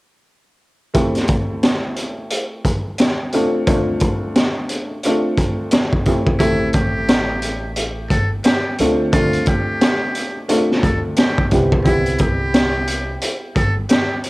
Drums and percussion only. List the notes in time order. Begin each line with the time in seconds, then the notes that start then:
0.94 kick, closed hi-hat
1.15 snare, closed hi-hat
1.27 kick, closed hi-hat
1.63 snare, closed hi-hat
1.96 closed hi-hat
2.30 closed hi-hat
2.65 kick, closed hi-hat
2.98 snare, closed hi-hat
3.33 closed hi-hat
3.67 kick, closed hi-hat
4.00 kick, closed hi-hat
4.36 snare, closed hi-hat
4.69 closed hi-hat
5.03 closed hi-hat
5.38 kick, closed hi-hat
5.71 snare, closed hi-hat
5.93 kick
6.05 kick, closed hi-hat
6.27 kick
6.40 kick, closed hi-hat
6.73 kick, closed hi-hat
7.08 snare, closed hi-hat
7.42 closed hi-hat
7.76 closed hi-hat
8.10 kick, closed hi-hat
8.44 snare, closed hi-hat
8.78 closed hi-hat
9.13 kick, closed hi-hat
9.33 closed hi-hat
9.46 kick, closed hi-hat
9.81 snare, closed hi-hat
10.15 closed hi-hat
10.49 closed hi-hat
10.71 snare
10.83 kick, closed hi-hat
11.16 snare, closed hi-hat
11.38 kick
11.51 kick, closed hi-hat
11.72 kick
11.85 kick, closed hi-hat
12.06 closed hi-hat
12.18 kick, closed hi-hat
12.54 snare, closed hi-hat
12.87 closed hi-hat
13.21 closed hi-hat
13.56 kick, closed hi-hat
13.89 snare, closed hi-hat
14.24 closed hi-hat